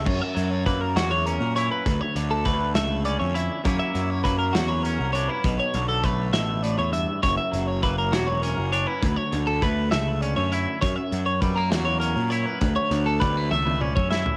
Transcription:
<<
  \new Staff \with { instrumentName = "Clean electric guitar" } { \time 6/8 \key fis \phrygian \tempo 4. = 67 cis''16 e''8 cis''16 b'16 ais'16 fis'16 cis''16 ais'8 cis''16 b'16~ | b'16 cis''8 a'16 b'8 e''8 d''16 cis''16 e''8 | cis''16 e''8 cis''16 b'16 ais'16 fis'16 cis''16 ais'8 cis''16 b'16~ | b'16 cis''8 a'16 b'8 e''8 d''16 cis''16 e''8 |
cis''16 e''8 cis''16 b'16 ais'16 fis'16 cis''16 ais'8 cis''16 b'16~ | b'16 cis''8 a'16 b'8 e''8 d''16 cis''16 e''8 | cis''16 e''8 cis''16 b'16 ais'16 fis'16 cis''16 ais'8 cis''16 b'16~ | b'16 cis''8 a'16 b'8 e''8 d''16 cis''16 e''8 | }
  \new Staff \with { instrumentName = "Clean electric guitar" } { \time 6/8 \key fis \phrygian << { r4 ais4 cis'8 e'8 | r4 a4 cis'8 e'8 | <fis ais cis' e'>4 ais4 cis'8 d'16 e'16 | r4 a2 |
r4 ais4 cis'8 d'16 e'16 | r4 a4 cis'8 e'8 | r4 g16 ais8. cis'8 e'8 | r4 g16 a8. cis'8 e'8 | } \\ { fis,8 fis4 fis4. | d,8 d4 r4. | fis,8 fis4 fis4. | b,8 d4 b,8 a,8 g,8 |
fis,8 fis4 fis4. | d,8 d4 r4. | fis,8 fis4 fis4. | d,8 d4 r4. | } >> }
  \new Staff \with { instrumentName = "Picked electric bass" } { \clef bass \time 6/8 \key fis \phrygian fis,16 r16 fis,8 fis,8 e,8. ais,8 r16 | d,16 r16 d,8 d,8 cis,8. f,8 r16 | fis,16 r16 fis,8 fis,8 e,8. c,8 r16 | b,,16 r16 b,,8 b,,8 a,,8. e,8 r16 |
fis,,16 r16 fis,,8 fis,,8 e,,8. fis,,8 r16 | d,16 r16 d,8 d,8 cis,8. fis,8 r16 | fis,16 r16 fis,8 fis,8 e,8. ais,8 r16 | d,16 r16 d,8 d,8 cis,8. fis,8 r16 | }
  \new DrumStaff \with { instrumentName = "Drums" } \drummode { \time 6/8 <cymc bd>8 hh8 <hh bd>8 <hh sn>8 hh8 hh8 | <hh bd>8 hh8 <hh bd>8 <hh sn>8 hh8 hh8 | <hh bd>8 hh8 <hh bd>8 <hh sn>8 hh8 hh8 | <hh bd>8 hh8 <hh bd>8 <hh sn>8 hh8 hh8 |
<hh bd>8 hh8 <hh bd>8 <hh sn>8 hh8 hh8 | <hh bd>8 hh8 <hh bd>8 <hh sn>8 hh8 hh8 | <hh bd>8 hh8 <hh bd>8 <hh sn>8 hh8 hh8 | <hh bd>8 hh8 <hh bd>8 tommh16 tommh16 toml16 bd16 sn16 tomfh16 | }
>>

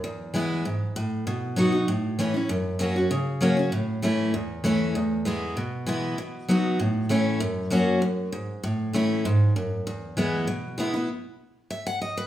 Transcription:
\new Staff \with { instrumentName = "Steel-string acoustic guitar" } { \time 4/4 \key e \major \tempo 4 = 196 << { r4 <e gis b e'>4 r2 | r4 <fis b dis' fis'>8 <dis' fis'>8 r4 <e a cis' e'>8 <cis' e'>8 | r4 <fis ais cis' fis'>8 <cis' fis'>8 r4 <fis ais cis' fis'>8 <cis' fis'>8 | r4 <e a cis' e'>4 r4 <e a cis' e'>4 |
r4 <e gis b e'>4 r4 <e gis b e'>4 | r4 <fis b dis' fis'>4 r4 <e a cis' e'>4 | r4 <fis ais cis' fis'>4 r2 | r4 <e a cis' e'>4 r2 |
r4 <e gis b e'>4 r4 <e gis b e'>8 <b e'>8 | r2 e''8 fis''8 dis''8 b'8 | } \\ { e,2 gis,4 a,4 | b,2 a,2 | fis,2 cis2 | a,2 e,2 |
e,2 b,2 | b,2 a,2 | fis,2 fis,4 gis,4 | a,2 gis,4 fis,4 |
e,2 b,2 | r1 | } >> }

